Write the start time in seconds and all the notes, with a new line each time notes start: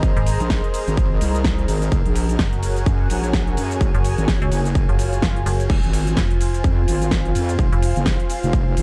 Already playing: G#4 A#4 C5 D#5 A#5
0.03 G#1, kick, shaker
0.17 G#1, closed hi-hat
0.27 open hi-hat, ride, shaker
0.40 A#1, closed hi-hat, shaker
0.50 kick, snare, shaker
0.64 closed hi-hat
0.74 open hi-hat, ride, shaker
0.87 G#1, closed hi-hat, shaker
0.97 kick, shaker
1.21 C2, open hi-hat, ride, shaker
1.35 closed hi-hat, shaker
1.44 kick, snare, shaker
1.58 closed hi-hat
1.68 G#1, open hi-hat, ride, shaker
1.82 closed hi-hat, shaker
1.92 F#1 F#4 G#4 F#5, kick, shaker
2.06 A#1, closed hi-hat
2.14 G#5, open hi-hat, ride, shaker
2.29 closed hi-hat, shaker
2.34 C#5
2.39 F#1, kick, snare, shaker
2.53 closed hi-hat
2.63 open hi-hat, ride, shaker
2.76 closed hi-hat, shaker
2.86 F#2, kick, shaker
3.10 A#1, open hi-hat, ride, shaker
3.24 closed hi-hat, shaker
3.33 kick, snare, shaker
3.47 closed hi-hat
3.57 F#2, open hi-hat, ride, shaker
3.71 closed hi-hat, shaker
3.81 F#1 G#5, kick, shaker
3.94 F#1, closed hi-hat
4.04 open hi-hat, ride, shaker
4.18 G#1, closed hi-hat, shaker
4.28 kick, snare, shaker
4.42 C#2, closed hi-hat
4.52 F#1, open hi-hat, ride, shaker
4.65 closed hi-hat, shaker
4.75 kick, swell, shaker
4.89 F#1, closed hi-hat
4.99 open hi-hat, ride, shaker
5.13 closed hi-hat, shaker
5.22 F#1, kick, snare, shaker
5.36 closed hi-hat
5.46 F#1, open hi-hat, ride, shaker
5.60 closed hi-hat, shaker
5.70 F1 F4 C5, kick, crash, shaker
5.83 G#1, closed hi-hat
5.93 open hi-hat, ride, shaker
6.07 closed hi-hat, shaker
6.17 F1, kick, snare, shaker
6.31 closed hi-hat
6.41 open hi-hat, ride, shaker
6.49 F5
6.54 closed hi-hat, shaker
6.64 F2, kick, shaker
6.88 G#1, open hi-hat, ride, shaker
7.02 closed hi-hat, shaker
7.11 kick, snare, shaker
7.25 closed hi-hat
7.35 F2, open hi-hat, ride, shaker
7.49 closed hi-hat, shaker
7.59 F1, kick, shaker
7.72 F1, closed hi-hat
7.82 open hi-hat, ride, shaker
7.96 F#1, closed hi-hat, shaker
8.06 kick, snare, shaker
8.20 closed hi-hat
8.30 open hi-hat, ride, shaker
8.43 F1, closed hi-hat, shaker
8.53 kick, shaker
8.77 G#1, open hi-hat, ride, shaker